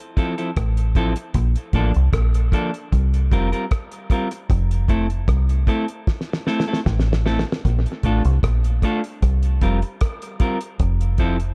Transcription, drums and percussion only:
0.17 kick medium
0.17 closed hi-hat medium
0.38 closed hi-hat soft
0.57 kick loud
0.57 cross-stick loud
0.57 closed hi-hat medium
0.77 closed hi-hat medium
0.95 kick medium
0.95 closed hi-hat medium
1.16 closed hi-hat medium
1.34 kick loud
1.34 closed hi-hat loud
1.56 closed hi-hat medium
1.73 kick medium
1.73 closed hi-hat medium
1.94 closed hi-hat soft
2.13 kick medium
2.13 cross-stick loud
2.13 closed hi-hat medium
2.34 closed hi-hat medium
2.52 kick medium
2.52 closed hi-hat medium
2.74 closed hi-hat soft
2.93 kick loud
2.93 closed hi-hat medium
3.14 closed hi-hat soft
3.32 kick medium
3.32 closed hi-hat medium
3.53 closed hi-hat soft
3.71 kick loud
3.71 cross-stick loud
3.71 closed hi-hat medium
3.92 closed hi-hat medium
4.10 kick medium
4.10 closed hi-hat medium
4.31 closed hi-hat medium
4.50 kick loud
4.50 closed hi-hat loud
4.71 closed hi-hat medium
4.88 kick medium
4.88 closed hi-hat medium
5.10 closed hi-hat soft
5.28 kick loud
5.28 cross-stick loud
5.28 closed hi-hat medium
5.49 closed hi-hat soft
5.67 kick medium
5.67 closed hi-hat medium
5.88 closed hi-hat soft
6.07 kick loud
6.07 snare medium
6.21 snare soft
6.33 snare medium
6.47 snare medium
6.60 snare medium
6.73 snare medium
6.86 kick loud
6.86 snare medium
7.00 snare medium
7.13 snare medium
7.26 snare medium
7.39 snare loud
7.52 snare loud
7.65 kick loud
7.65 closed hi-hat medium
7.86 closed hi-hat soft
8.03 kick medium
8.03 closed hi-hat medium
8.25 closed hi-hat soft
8.43 kick loud
8.43 cross-stick loud
8.43 closed hi-hat medium
8.64 closed hi-hat soft
8.82 kick medium
8.82 closed hi-hat medium
9.04 closed hi-hat soft
9.22 kick loud
9.22 cross-stick medium
9.22 closed hi-hat medium
9.43 closed hi-hat medium
9.61 kick medium
9.61 closed hi-hat medium
9.82 closed hi-hat soft
10.01 kick loud
10.01 cross-stick medium
10.01 closed hi-hat medium
10.22 closed hi-hat medium
10.40 kick medium
10.40 closed hi-hat medium
10.61 closed hi-hat medium
10.79 kick loud
10.79 closed hi-hat medium
11.01 closed hi-hat soft
11.18 kick medium
11.18 closed hi-hat medium
11.40 closed hi-hat soft

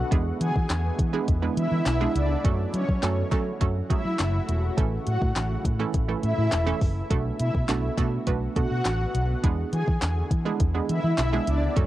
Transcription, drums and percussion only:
0.12 kick loud
0.12 closed hi-hat loud
0.41 closed hi-hat medium
0.56 kick medium
0.70 snare medium
0.70 clap medium
0.70 clap loud
0.70 closed hi-hat medium
0.99 kick loud
0.99 closed hi-hat medium
1.28 kick medium
1.28 closed hi-hat loud
1.57 closed hi-hat medium
1.86 snare loud
1.86 clap loud
1.86 clap medium
1.86 closed hi-hat medium
2.16 closed hi-hat medium
2.45 kick loud
2.45 closed hi-hat loud
2.74 closed hi-hat medium
2.89 kick medium
3.03 snare medium
3.03 clap medium
3.03 clap loud
3.03 closed hi-hat medium
3.32 kick medium
3.32 clap medium
3.32 closed hi-hat medium
3.61 kick medium
3.61 closed hi-hat loud
3.90 kick loud
3.90 closed hi-hat medium
4.19 snare medium
4.19 clap loud
4.19 clap medium
4.19 closed hi-hat medium
4.49 closed hi-hat medium
4.78 kick loud
4.78 closed hi-hat loud
5.07 closed hi-hat medium
5.22 kick medium
5.36 snare medium
5.36 clap medium
5.36 clap loud
5.36 closed hi-hat medium
5.65 kick loud
5.65 closed hi-hat medium
5.94 kick medium
5.94 closed hi-hat loud
6.23 closed hi-hat medium
6.52 snare medium
6.52 clap loud
6.52 clap medium
6.52 closed hi-hat medium
6.81 kick loud
6.81 open hi-hat medium
7.11 kick loud
7.11 closed hi-hat loud
7.39 closed hi-hat medium
7.55 kick medium
7.69 snare medium
7.69 clap medium
7.69 clap loud
7.69 closed hi-hat medium
7.98 kick medium
7.98 clap medium
7.98 closed hi-hat medium
8.27 kick medium
8.27 closed hi-hat loud
8.56 kick loud
8.56 closed hi-hat medium
8.85 snare loud
8.85 clap loud
8.85 clap medium
8.85 closed hi-hat medium
9.15 closed hi-hat medium
9.44 kick loud
9.44 closed hi-hat loud
9.73 closed hi-hat medium
9.88 kick medium
10.02 snare medium
10.02 clap medium
10.02 clap loud
10.02 closed hi-hat medium
10.31 kick medium
10.31 closed hi-hat medium
10.60 kick medium
10.60 closed hi-hat loud
10.89 closed hi-hat medium
11.18 snare medium
11.18 clap loud
11.18 clap medium
11.18 closed hi-hat medium
11.47 closed hi-hat medium
11.77 kick loud
11.77 closed hi-hat loud

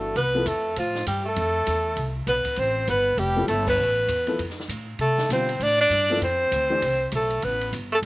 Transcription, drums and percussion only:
0.16 ride medium
0.46 hi-hat pedal medium
0.46 ride medium
0.76 ride medium
0.95 snare soft
1.06 hi-hat pedal medium
1.06 ride medium
1.36 ride medium
1.67 hi-hat pedal soft
1.67 ride medium
1.97 ride medium
2.27 hi-hat pedal medium
2.27 ride medium
2.45 kick soft
2.45 ride soft
2.56 ride medium
2.87 hi-hat pedal medium
2.87 ride medium
3.18 ride medium
3.48 hi-hat pedal medium
3.48 ride medium
3.67 kick medium
3.67 crash medium
4.08 hi-hat pedal medium
4.08 ride medium
4.27 ride soft
4.39 ride medium
4.50 snare soft
4.60 snare soft
4.69 hi-hat pedal medium
4.69 ride medium
4.99 ride medium
5.18 snare soft
5.30 hi-hat pedal medium
5.30 ride medium
5.49 ride medium
5.60 ride medium
5.91 hi-hat pedal medium
5.91 ride medium
6.09 ride soft
6.22 ride medium
6.52 hi-hat pedal medium
6.52 ride medium
6.82 ride medium
7.12 hi-hat pedal medium
7.12 ride medium
7.30 ride soft
7.42 ride medium
7.61 ride soft
7.73 hi-hat pedal medium
7.73 ride medium

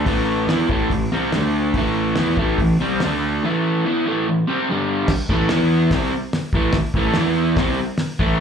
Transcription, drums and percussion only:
0.06 kick loud
0.06 open hi-hat medium
0.49 snare loud
0.49 open hi-hat medium
0.69 kick loud
0.90 kick loud
0.90 open hi-hat medium
1.32 snare loud
1.32 open hi-hat medium
1.74 kick loud
1.74 open hi-hat medium
2.16 snare loud
2.16 open hi-hat medium
2.37 kick loud
2.58 kick loud
2.58 open hi-hat medium
3.00 snare loud
3.00 open hi-hat medium
5.08 kick loud
5.08 snare loud
5.08 crash loud
5.29 kick loud
5.49 snare loud
5.49 open hi-hat medium
5.91 kick loud
5.91 snare loud
5.91 open hi-hat medium
6.33 snare loud
6.33 open hi-hat medium
6.53 kick loud
6.73 kick loud
6.73 snare loud
6.73 open hi-hat medium
6.94 kick loud
7.14 snare loud
7.14 open hi-hat medium
7.57 kick loud
7.57 snare loud
7.57 open hi-hat medium
7.98 snare loud
7.98 open hi-hat medium
8.19 kick loud

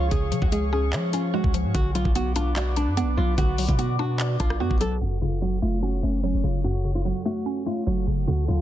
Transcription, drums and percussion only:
0.11 kick loud
0.11 closed hi-hat medium
0.32 closed hi-hat medium
0.42 kick loud
0.52 closed hi-hat medium
0.93 clap loud
0.93 closed hi-hat medium
1.13 closed hi-hat medium
1.44 kick loud
1.54 closed hi-hat medium
1.75 kick loud
1.75 closed hi-hat medium
1.95 closed hi-hat medium
2.05 kick loud
2.15 closed hi-hat medium
2.36 closed hi-hat medium
2.56 clap loud
2.56 closed hi-hat medium
2.76 closed hi-hat medium
2.97 closed hi-hat medium
3.38 kick loud
3.38 closed hi-hat medium
3.58 closed hi-hat medium
3.58 open hi-hat medium
3.68 kick loud
3.68 closed hi-hat medium
3.79 closed hi-hat medium
4.20 clap loud
4.20 closed hi-hat medium
4.40 kick loud
4.40 closed hi-hat medium
4.50 cross-stick loud
4.71 kick loud
4.81 closed hi-hat medium

